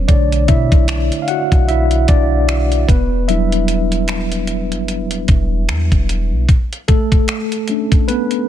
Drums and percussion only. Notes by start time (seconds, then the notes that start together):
0.09 kick, closed hi-hat
0.32 closed hi-hat
0.48 kick, closed hi-hat
0.72 kick, closed hi-hat
0.88 finger snap, closed hi-hat
1.12 closed hi-hat
1.28 closed hi-hat
1.52 kick, closed hi-hat
1.69 closed hi-hat
1.91 closed hi-hat
2.08 kick, closed hi-hat
2.49 finger snap, closed hi-hat
2.72 closed hi-hat
2.89 kick, closed hi-hat
3.29 closed hi-hat
3.52 closed hi-hat
3.68 closed hi-hat
3.92 closed hi-hat
4.08 finger snap, closed hi-hat
4.32 closed hi-hat
4.47 closed hi-hat
4.72 closed hi-hat
4.88 closed hi-hat
5.11 closed hi-hat
5.28 kick, closed hi-hat
5.69 finger snap, closed hi-hat
5.92 kick, closed hi-hat
6.09 closed hi-hat
6.49 kick, closed hi-hat
6.73 closed hi-hat
6.88 kick, closed hi-hat
7.12 kick, closed hi-hat
7.28 finger snap, closed hi-hat
7.52 closed hi-hat
7.68 closed hi-hat
7.92 kick, closed hi-hat
8.08 closed hi-hat
8.31 closed hi-hat